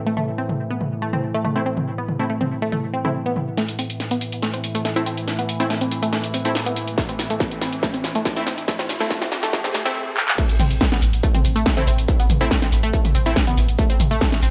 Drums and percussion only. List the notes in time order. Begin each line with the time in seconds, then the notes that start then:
0.17 mid tom
0.49 mid tom
0.81 mid tom
1.13 mid tom
1.45 mid tom
1.77 mid tom
2.08 mid tom
2.41 mid tom
2.72 mid tom
3.05 mid tom
3.36 mid tom
3.57 snare, closed hi-hat
3.69 closed hi-hat
3.79 open hi-hat
3.90 closed hi-hat
4.00 snare, closed hi-hat
4.11 closed hi-hat
4.21 open hi-hat
4.32 closed hi-hat
4.42 snare, closed hi-hat
4.54 closed hi-hat
4.64 open hi-hat
4.75 closed hi-hat
4.85 snare, closed hi-hat
4.96 closed hi-hat
5.06 open hi-hat
5.17 closed hi-hat
5.28 snare, closed hi-hat
5.39 closed hi-hat
5.49 open hi-hat
5.60 closed hi-hat
5.70 snare, closed hi-hat
5.81 closed hi-hat
5.91 open hi-hat
6.03 closed hi-hat
6.13 snare, closed hi-hat
6.24 closed hi-hat
6.34 open hi-hat
6.45 closed hi-hat
6.55 snare, closed hi-hat
6.66 closed hi-hat
6.76 open hi-hat
6.88 closed hi-hat
6.98 kick, snare, closed hi-hat
7.09 closed hi-hat
7.19 snare, open hi-hat
7.30 closed hi-hat
7.40 kick, snare, closed hi-hat
7.51 closed hi-hat
7.62 snare, open hi-hat
7.73 closed hi-hat
7.83 kick, snare, closed hi-hat
7.94 closed hi-hat
8.04 snare, open hi-hat
8.15 closed hi-hat
8.25 kick, snare, closed hi-hat
8.36 closed hi-hat
8.47 snare, open hi-hat
8.58 closed hi-hat
8.68 kick, snare, closed hi-hat
8.79 snare, closed hi-hat
8.89 snare, open hi-hat
9.00 snare, closed hi-hat
9.11 kick, snare, closed hi-hat
9.22 snare, closed hi-hat
9.32 snare, open hi-hat
9.43 snare, closed hi-hat
9.53 kick, snare, closed hi-hat
9.64 snare, closed hi-hat
9.74 snare, open hi-hat
9.86 snare, closed hi-hat
10.17 clap
10.28 clap
10.38 kick, closed hi-hat, crash, shaker
10.49 closed hi-hat, shaker
10.60 open hi-hat, mid tom, shaker
10.71 closed hi-hat, shaker
10.81 kick, snare, closed hi-hat, shaker
10.92 snare, closed hi-hat, shaker
11.02 open hi-hat, shaker
11.13 closed hi-hat, shaker
11.23 kick, closed hi-hat, shaker
11.35 closed hi-hat, mid tom, shaker
11.45 open hi-hat, shaker
11.56 closed hi-hat, shaker
11.66 kick, snare, closed hi-hat, shaker
11.77 closed hi-hat, mid tom, shaker
11.87 open hi-hat, shaker
11.98 closed hi-hat, shaker
12.08 kick, closed hi-hat, shaker
12.20 closed hi-hat, shaker
12.30 open hi-hat, mid tom, shaker
12.41 closed hi-hat, shaker
12.51 kick, snare, closed hi-hat, shaker
12.62 snare, closed hi-hat, shaker
12.72 open hi-hat, shaker
12.83 closed hi-hat, shaker
12.94 kick, closed hi-hat, shaker
13.05 closed hi-hat, mid tom, shaker
13.15 open hi-hat, shaker
13.26 closed hi-hat, shaker
13.36 kick, snare, closed hi-hat, shaker
13.47 closed hi-hat, mid tom, shaker
13.57 open hi-hat, shaker
13.69 closed hi-hat, shaker
13.79 kick, closed hi-hat, shaker
13.90 closed hi-hat, shaker
14.00 open hi-hat, mid tom, shaker
14.11 closed hi-hat, shaker
14.21 kick, snare, closed hi-hat, shaker
14.32 snare, closed hi-hat, shaker
14.43 open hi-hat, shaker